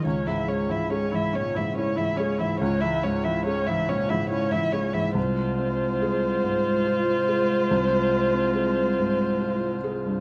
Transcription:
X:1
M:6/8
L:1/16
Q:3/8=47
K:Dblyd
V:1 name="Violin"
d _f d f d f d f d f d f | d _f d f d f d f d f d f | c12- | c12 |]
V:2 name="Viola"
D _F D F D F D F D F D F | D _F D F D F D F D F D F | F12- | F12 |]
V:3 name="Cello" clef=bass
A, _F, A, F, A, F, A, F, A, F, A, F, | A, _F, A, F, A, F, A, F, A, F, A, F, | A,12- | A,12 |]
V:4 name="Felt piano" clef=bass
D,, A,, A, A,, A A,, B,, A,, _F A,, A A,, | D,, A, A,, A, A A,, B,, A,, _F A,, A A,, | C,,2 C2 A2 A,, z F2 A2 | C,, C2 C A2 A,, z F2 A G,, |]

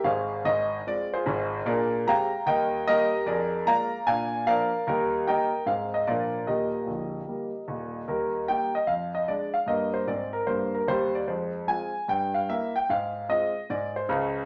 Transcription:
X:1
M:4/4
L:1/8
Q:"Swing" 1/4=150
K:Eb
V:1 name="Grand piano"
[Acf]2 e2 d [FAc]3 | [ABd]2 [fgb]2 [Beg]2 [GBe]2 | [ABd]2 [dfb]2 [dfa]2 [Bdf]2 | [EGB]2 [Beg]2 f e [FBd]2 |
[GBe]6 z2 | B2 g e f e d f | e c d B c B c d | c2 a2 g f =e g |
f2 e2 d c3 |]
V:2 name="Grand piano" clef=bass
[A,,,A,,]2 [A,,,A,,]2 [A,CF]2 [A,,,A,,]2 | [B,,D]2 [A,CG]2 [E,,G,]2 [G,B,]2 | F,,2 [A,B,F]2 [B,,D]2 [F,B,D]2 | [E,,G,]2 [G,B,E]2 [A,,A,CE]2 [B,,F,B,D]2 |
[E,,,E,,]2 [B,,,,B,,,]2 [G,B,]2 [E,,,E,,]2 | [E,,G,]2 [G,B,E]2 F,,2 [A,D]2 | [G,,B,]2 [A,,C]2 [G,,B,]2 [E,,G,]2 | [F,,A,]2 [A,CF]2 G,,2 [B,=E]2 |
A,,2 [A,CF]2 A,,2 [_D,,_D,]2 |]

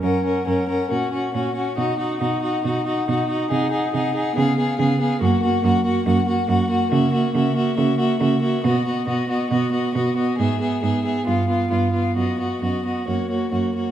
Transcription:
X:1
M:4/4
L:1/8
Q:1/4=138
K:F#
V:1 name="Violin"
f f f f f f f f | f f f f f f f f | f f f f e e e e | f f f f f f f f |
[K:B] e e e e e e e e | d d d d d d d d | e e e e =f f f f | d d d d c c c c |]
V:2 name="Violin"
A A A A F F F F | F F F F F F F F | G G G G G G G G | F F F F F F F F |
[K:B] F F F F F F F F | F F F F F F F F | G G G G =F F F F | F F F F F F F F |]
V:3 name="Viola"
C C C C C C C C | D D D D D D D D | D D D D B, B, B, B, | A, A, A, A, A, A, A, A, |
[K:B] A, A, A, A, A, A, A, A, | B, B, B, B, B, B, B, B, | B, B, B, B, B, B, B, B, | B, B, B, B, A, A, A, A, |]
V:4 name="Cello" clef=bass
F,,2 F,,2 A,,2 A,,2 | B,,2 B,,2 B,,2 B,,2 | ^B,,2 B,,2 C,2 C,2 | F,,2 F,,2 F,,2 F,,2 |
[K:B] C,2 C,2 C,2 C,2 | B,,2 B,,2 B,,2 B,,2 | G,,2 G,,2 =G,,2 G,,2 | F,,2 F,,2 F,,2 F,,2 |]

